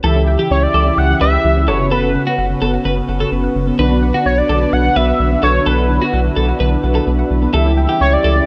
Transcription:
0.04 0.37 C#2 loud
0.04 1.67 C#3 medium
0.04 0.15 E3 medium
0.04 1.65 E4 medium
0.04 1.67 E4 medium
0.04 1.65 G4 medium
0.04 1.67 G4 medium
0.04 0.22 A4 loud
0.04 1.65 E5 medium
0.16 0.26 C#4 medium
0.27 0.38 G5 medium
0.39 0.50 E3 medium
0.39 0.57 G4 medium
0.51 0.67 C#2 loud
0.51 0.61 C#4 medium
0.51 0.64 C#5 loud
0.63 0.99 D5 loud
0.63 0.73 G5 medium
0.74 0.91 C#2 loud
0.74 0.85 E3 medium
0.74 0.83 A4 medium
0.86 0.97 C#4 medium
0.98 1.14 C#2 loud
0.98 1.21 F#5 loud
0.98 1.08 G5 loud
1.10 1.20 E3 medium
1.21 1.38 C#2 loud
1.21 1.32 C#4 medium
1.21 1.30 B4 medium
1.21 1.69 E5 loud
1.33 1.44 G5 medium
1.45 1.69 C#2 loud
1.45 1.55 E3 medium
1.56 1.67 C#4 medium
1.68 2.17 F#1 medium
1.68 7.50 B3 medium
1.68 3.77 C#4 medium
1.68 3.75 C#4 medium
1.68 5.62 F#4 medium
1.68 3.75 F#4 medium
1.68 1.77 A4 medium
1.68 3.75 B4 medium
1.68 1.91 C#5 loud
1.68 1.79 F#5 medium
1.80 1.90 C#3 medium
1.91 2.02 B3 loud
1.91 2.09 A4 medium
1.91 2.35 B4 medium
2.03 2.14 F#5 medium
2.15 2.26 C#3 medium
2.27 2.37 B3 medium
2.27 2.45 F#4 medium
2.38 2.55 F#1 loud
2.38 2.49 F#5 loud
2.50 2.61 C#3 medium
2.62 2.78 F#1 loud
2.62 2.72 B3 medium
2.62 2.71 A4 medium
2.74 2.84 F#5 medium
2.85 3.02 F#1 loud
2.85 2.96 C#3 medium
2.85 2.94 B4 medium
2.97 3.08 B3 medium
3.09 3.25 F#1 loud
3.09 3.19 F#5 medium
3.20 3.31 C#3 medium
3.20 3.29 A4 medium
3.32 3.48 F#1 loud
3.32 3.43 B3 medium
3.44 3.54 F#5 medium
3.56 3.72 F#1 loud
3.56 3.66 C#3 medium
3.67 3.78 B3 medium
3.79 4.12 B1 loud
3.79 3.90 D3 medium
3.79 7.50 D4 medium
3.79 7.50 F#4 medium
3.79 3.97 B4 loud
3.79 7.50 B4 loud
3.91 4.01 B3 medium
4.03 4.13 F#5 medium
4.14 4.25 D3 medium
4.14 4.32 F#4 medium
4.26 4.42 B1 loud
4.26 4.37 B3 medium
4.26 4.39 C#5 loud
4.38 4.74 D5 loud
4.38 4.48 F#5 medium
4.49 4.66 B1 medium
4.49 4.60 D3 medium
4.49 4.58 A4 medium
4.61 4.72 B3 medium
4.73 4.89 B1 loud
4.73 4.98 F#5 loud
4.73 4.83 F#5 loud
4.85 4.95 D3 medium
4.96 5.13 B1 loud
4.96 5.07 B3 medium
4.96 5.05 B4 medium
4.96 5.43 E5 loud
5.08 5.19 F#5 medium
5.20 5.36 B1 loud
5.20 5.30 D3 medium
5.31 5.42 B3 medium
5.43 5.59 B1 loud
5.43 5.52 A4 medium
5.43 5.68 C#5 loud
5.43 5.54 F#5 medium
5.55 5.65 D3 medium
5.66 5.99 B1 loud
5.66 5.77 B3 loud
5.66 8.46 E4 medium
5.66 5.84 A4 loud
5.66 6.14 B4 medium
5.78 5.89 F#5 medium
5.90 6.00 D3 medium
6.02 6.12 B3 medium
6.02 6.19 F#4 medium
6.13 6.30 B1 loud
6.13 6.24 F#5 loud
6.25 6.36 D3 medium
6.36 6.53 B1 loud
6.36 6.47 B3 medium
6.36 6.45 A4 medium
6.49 6.59 F#5 medium
6.60 6.77 B1 loud
6.60 6.71 D3 medium
6.60 6.69 B4 medium
6.72 6.83 B3 medium
6.84 7.00 B1 loud
6.84 6.94 F#5 medium
6.95 7.06 D3 medium
6.95 7.04 A4 medium
7.07 7.23 B1 loud
7.07 7.18 B3 medium
7.19 7.29 F#5 medium
7.31 7.47 B1 loud
7.31 7.41 D3 medium
7.42 7.53 B3 medium
7.54 7.87 C#2 loud
7.54 8.46 C#3 medium
7.54 7.65 E3 medium
7.54 8.46 G3 medium
7.54 8.46 E4 medium
7.54 8.46 G4 medium
7.54 7.72 A4 medium
7.54 8.46 E5 medium
7.66 7.76 C#4 medium
7.77 7.88 G5 medium
7.89 8.00 E3 medium
7.89 8.07 G4 medium
8.01 8.17 C#2 loud
8.01 8.11 C#4 loud
8.01 8.14 C#5 loud
8.12 8.46 D5 loud
8.12 8.23 G5 medium
8.24 8.41 C#2 loud
8.24 8.35 E3 medium
8.24 8.33 A4 medium
8.36 8.46 C#4 medium

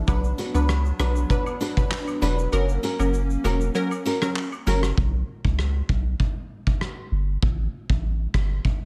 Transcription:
0.07 0.33 B1 loud
0.07 0.25 F#3 medium
0.07 4.94 F#3 medium
0.07 2.50 B3 medium
0.07 0.26 D4 medium
0.07 2.50 D4 medium
0.07 0.26 B4 loud
0.07 kick loud
0.07 high woodblock medium
0.07 shaker medium
0.24 shaker medium
0.38 0.52 D4 medium
0.38 0.52 F#4 medium
0.38 0.53 B4 medium
0.38 closed hi-hat medium
0.38 cabasa medium
0.38 shaker medium
0.54 0.92 C#2 loud
0.54 0.71 F#3 medium
0.54 0.71 D4 medium
0.54 0.71 B4 medium
0.54 high woodblock medium
0.54 shaker medium
0.69 cross-stick loud
0.69 shaker medium
0.85 shaker medium
0.99 1.25 B1 medium
0.99 1.17 F#3 medium
0.99 1.13 D4 medium
0.99 1.17 D4 medium
0.99 1.14 F#4 medium
0.99 1.18 B4 medium
0.99 1.14 B4 loud
0.99 cross-stick loud
0.99 closed hi-hat medium
0.99 cabasa medium
0.99 high woodblock medium
0.99 shaker medium
1.16 shaker medium
1.30 1.48 F#3 loud
1.30 1.48 D4 medium
1.30 1.48 B4 loud
1.30 kick medium
1.30 shaker medium
1.46 high woodblock medium
1.46 shaker medium
1.60 1.74 D4 medium
1.60 1.75 F#4 loud
1.60 1.75 B4 loud
1.60 closed hi-hat medium
1.60 cabasa medium
1.60 shaker medium
1.77 2.18 F#3 medium
1.77 2.19 D4 medium
1.77 2.19 B4 medium
1.77 kick loud
1.77 shaker medium
1.91 cross-stick loud
1.91 clap loud
1.91 shaker medium
2.08 high woodblock medium
2.08 shaker medium
2.22 2.48 E1 loud
2.22 2.50 F#3 medium
2.22 2.36 D4 medium
2.22 2.50 D4 medium
2.22 2.36 F#4 loud
2.22 2.50 B4 medium
2.22 2.37 B4 loud
2.22 closed hi-hat medium
2.22 cabasa medium
2.22 shaker medium
2.38 muted nylon-string guitar stroke soft
2.38 shaker medium
2.52 2.78 F#1 loud
2.52 2.95 F#3 medium
2.52 4.95 A#3 medium
2.52 2.96 C#4 medium
2.52 4.95 C#4 medium
2.52 2.96 A#4 loud
2.52 high woodblock medium
2.52 shaker medium
2.69 shaker medium
2.83 2.97 C#4 medium
2.83 2.97 F#4 medium
2.83 2.98 A#4 medium
2.83 closed hi-hat medium
2.83 cabasa medium
2.83 shaker medium
2.99 3.37 F#1 medium
2.99 3.15 F#3 medium
2.99 3.16 C#4 medium
2.99 3.16 A#4 medium
2.99 high woodblock medium
2.99 shaker medium
3.14 shaker medium
3.30 shaker medium
3.44 3.70 E1 medium
3.44 3.62 F#3 medium
3.44 3.58 C#4 medium
3.44 3.62 C#4 medium
3.44 3.59 F#4 loud
3.44 3.62 A#4 medium
3.44 3.59 A#4 loud
3.44 closed hi-hat medium
3.44 cabasa medium
3.44 high woodblock medium
3.44 shaker soft
3.61 shaker medium
3.75 3.93 F#3 loud
3.75 3.93 C#4 medium
3.75 3.93 A#4 loud
3.75 shaker medium
3.91 high woodblock medium
3.91 shaker medium
4.05 4.19 C#4 medium
4.05 4.20 F#4 medium
4.05 4.20 A#4 medium
4.05 closed hi-hat medium
4.05 cabasa medium
4.05 shaker medium
4.22 4.38 F#3 medium
4.22 4.38 C#4 medium
4.22 4.38 A#4 medium
4.22 cross-stick medium
4.22 shaker medium
4.36 clap medium
4.36 shaker medium
4.52 high woodblock medium
4.52 shaker medium
4.66 4.93 F#1 loud
4.66 4.85 F#3 medium
4.66 4.80 C#4 medium
4.66 4.85 C#4 medium
4.66 4.81 F#4 medium
4.66 4.85 A#4 medium
4.66 4.81 A#4 loud
4.66 closed hi-hat medium
4.66 cabasa medium
4.66 shaker medium
4.83 muted nylon-string guitar stroke soft
4.83 cross-stick medium
4.83 shaker medium
4.98 5.23 B1 loud
4.98 kick loud
5.45 5.82 C#2 medium
5.45 kick medium
5.59 cross-stick medium
5.89 6.15 B1 medium
5.89 kick medium
6.20 kick medium
6.67 kick medium
6.81 cross-stick loud
7.12 7.37 G1 loud
7.42 7.68 A1 loud
7.42 kick loud
7.90 8.27 A1 medium
7.90 kick medium
8.34 8.60 G1 medium
8.34 kick medium
8.34 cross-stick loud
8.65 kick medium

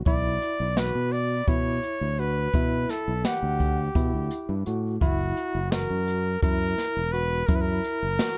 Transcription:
0.06 0.37 B1 medium
0.06 0.64 E4 medium
0.06 0.80 D5 medium
0.06 kick loud
0.06 closed hi-hat medium
0.42 closed hi-hat medium
0.60 0.90 B1 medium
0.77 1.34 F#4 medium
0.77 1.14 B4 medium
0.77 snare medium
0.77 closed hi-hat medium
0.95 1.40 B2 medium
1.12 1.50 D5 medium
1.12 closed hi-hat medium
1.47 1.78 B2 medium
1.47 2.05 E4 medium
1.47 2.21 C#5 medium
1.47 kick loud
1.47 closed hi-hat medium
1.83 closed hi-hat medium
2.01 2.46 D2 medium
2.18 2.48 F#4 medium
2.18 2.92 B4 medium
2.18 closed hi-hat medium
2.54 2.84 B2 medium
2.54 3.11 E4 medium
2.54 kick loud
2.54 closed hi-hat medium
2.89 3.27 A4 medium
2.89 snare soft
2.89 closed hi-hat medium
3.08 3.22 B1 medium
3.25 4.66 G4 medium
3.25 3.82 F#5 medium
3.25 snare loud
3.25 closed hi-hat medium
3.43 3.88 D2 medium
3.60 kick medium
3.60 closed hi-hat medium
3.95 4.11 B2 loud
3.95 4.52 E4 medium
3.95 kick loud
3.95 closed hi-hat medium
4.14 4.28 D2 medium
4.31 closed hi-hat medium
4.49 4.64 G2 medium
4.66 4.97 A2 medium
4.66 4.95 F#4 medium
4.66 closed hi-hat medium
5.01 5.32 F#1 medium
5.01 5.59 E4 medium
5.01 5.73 F#4 medium
5.01 kick loud
5.01 closed hi-hat medium
5.37 closed hi-hat medium
5.55 5.85 F#1 medium
5.72 6.29 F#4 medium
5.72 6.42 A#4 medium
5.72 snare loud
5.72 closed hi-hat medium
5.90 6.35 F#2 medium
6.07 closed hi-hat medium
6.42 6.73 F#2 medium
6.42 7.00 E4 medium
6.42 7.14 A#4 loud
6.42 kick loud
6.42 closed hi-hat medium
6.78 snare soft
6.78 closed hi-hat medium
6.97 7.42 E1 medium
7.12 7.42 F#4 medium
7.12 7.48 B4 loud
7.12 closed hi-hat medium
7.47 7.79 F#2 medium
7.47 8.06 E4 medium
7.47 7.57 A#4 medium
7.47 kick loud
7.47 closed hi-hat medium
7.56 7.63 B4 medium
7.61 8.38 A#4 loud
7.84 closed hi-hat medium
8.03 8.17 F#1 medium
8.19 8.38 F#4 medium
8.19 snare loud
8.19 closed hi-hat medium

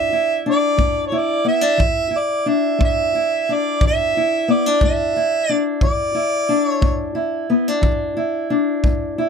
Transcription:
0.00 0.38 E3 medium
0.00 0.46 D4 medium
0.00 0.12 E4 soft
0.00 0.43 E5 loud
0.12 1.12 E4 medium
0.46 1.44 D4 medium
0.46 1.03 D5 medium
0.77 1.38 G#3 medium
0.77 kick medium
1.07 1.19 C#5 medium
1.12 2.10 E4 medium
1.17 1.47 D5 medium
1.45 1.61 B3 medium
1.45 2.19 E5 loud
1.61 1.79 D4 soft
1.78 2.39 E3 medium
1.78 kick medium
2.10 3.15 E4 medium
2.18 2.50 D5 medium
2.46 3.49 D4 medium
2.46 2.81 E5 medium
2.79 3.40 G#3 medium
2.79 kick medium
2.85 3.55 E5 loud
3.15 4.17 E4 medium
3.49 4.48 D4 soft
3.53 3.84 D5 medium
3.81 4.42 E3 medium
3.81 kick medium
3.87 4.53 E5 loud
4.17 5.16 E4 soft
4.48 4.66 B3 medium
4.48 4.83 D5 medium
4.66 5.48 D4 soft
4.81 5.43 G#3 medium
4.81 5.51 E5 medium
4.81 kick medium
5.16 6.14 E4 medium
5.49 5.84 D4 medium
5.49 5.66 D5 medium
5.81 6.42 E3 medium
5.81 6.68 D5 medium
5.81 kick medium
6.15 7.14 E4 medium
6.49 7.49 D4 medium
6.68 7.13 C#5 medium
6.81 7.42 G#3 medium
6.81 kick medium
7.15 8.16 E4 medium
7.50 7.68 B3 medium
7.68 8.49 D4 soft
7.81 8.43 E3 medium
7.81 kick medium
8.17 9.18 E4 medium
8.50 9.29 D4 medium
8.84 9.29 G#3 medium
8.84 kick medium
9.18 9.29 E4 medium

